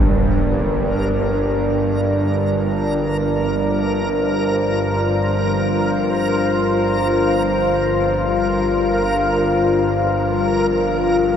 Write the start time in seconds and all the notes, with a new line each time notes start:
Already playing: G1 G2 D4 G4 A#4, impact
0.85 F4
1.86 C5